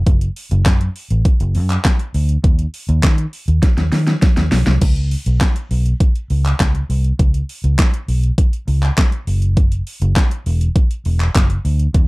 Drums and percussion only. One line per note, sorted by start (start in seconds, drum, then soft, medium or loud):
0.07 kick loud
0.07 closed hi-hat medium
0.21 closed hi-hat medium
0.36 open hi-hat medium
0.51 closed hi-hat medium
0.66 kick loud
0.66 snare medium
0.66 clap loud
0.66 closed hi-hat medium
0.81 closed hi-hat medium
0.96 open hi-hat medium
1.11 closed hi-hat medium
1.25 kick loud
1.25 closed hi-hat medium
1.40 closed hi-hat soft
1.55 open hi-hat medium
1.70 clap medium
1.70 closed hi-hat soft
1.85 kick loud
1.85 snare medium
1.85 clap loud
1.85 closed hi-hat medium
1.99 closed hi-hat soft
2.14 open hi-hat medium
2.29 closed hi-hat medium
2.44 kick loud
2.44 closed hi-hat medium
2.59 closed hi-hat medium
2.74 open hi-hat medium
2.89 closed hi-hat medium
3.03 kick loud
3.03 snare medium
3.03 clap loud
3.03 closed hi-hat medium
3.18 closed hi-hat medium
3.33 open hi-hat medium
3.48 closed hi-hat medium
3.63 kick loud
3.63 snare medium
3.63 closed hi-hat medium
3.78 snare medium
3.78 closed hi-hat soft
3.92 snare medium
3.92 open hi-hat medium
4.07 snare medium
4.07 closed hi-hat soft
4.22 kick loud
4.22 snare medium
4.22 closed hi-hat medium
4.37 snare medium
4.37 closed hi-hat soft
4.52 snare loud
4.52 open hi-hat medium
4.66 snare loud
4.66 closed hi-hat medium
4.81 kick loud
4.81 closed hi-hat medium
4.81 crash medium
4.96 closed hi-hat medium
5.11 open hi-hat medium
5.26 closed hi-hat medium
5.41 kick loud
5.41 snare medium
5.41 clap loud
5.41 closed hi-hat medium
5.56 closed hi-hat medium
5.71 open hi-hat medium
5.86 closed hi-hat medium
6.00 kick loud
6.00 closed hi-hat medium
6.16 closed hi-hat soft
6.30 open hi-hat medium
6.45 clap medium
6.45 closed hi-hat soft
6.60 kick loud
6.60 snare medium
6.60 clap loud
6.60 closed hi-hat medium
6.75 closed hi-hat soft
6.90 open hi-hat medium
7.05 closed hi-hat medium
7.19 kick loud
7.19 closed hi-hat medium
7.34 closed hi-hat medium
7.49 open hi-hat medium
7.64 closed hi-hat medium
7.79 kick loud
7.79 snare medium
7.79 clap loud
7.79 closed hi-hat medium
7.94 closed hi-hat medium
8.08 open hi-hat medium
8.23 closed hi-hat medium
8.38 kick loud
8.38 closed hi-hat medium
8.53 closed hi-hat soft
8.68 open hi-hat medium
8.83 clap medium
8.83 closed hi-hat soft
8.98 kick loud
8.98 snare loud
8.98 clap loud
8.98 closed hi-hat medium
9.12 closed hi-hat soft
9.27 open hi-hat medium
9.42 closed hi-hat medium
9.57 kick loud
9.57 closed hi-hat medium
9.72 closed hi-hat medium
9.87 open hi-hat medium
10.02 closed hi-hat medium
10.16 kick loud
10.16 snare medium
10.16 clap loud
10.16 closed hi-hat medium
10.31 closed hi-hat medium
10.46 open hi-hat medium
10.61 closed hi-hat medium
10.76 kick loud
10.76 closed hi-hat medium
10.91 closed hi-hat medium
11.05 open hi-hat medium
11.20 clap medium
11.20 closed hi-hat soft
11.35 kick loud
11.35 snare medium
11.35 clap loud
11.35 closed hi-hat medium
11.50 closed hi-hat soft
11.65 open hi-hat medium
11.79 closed hi-hat medium
11.94 kick loud
11.94 closed hi-hat medium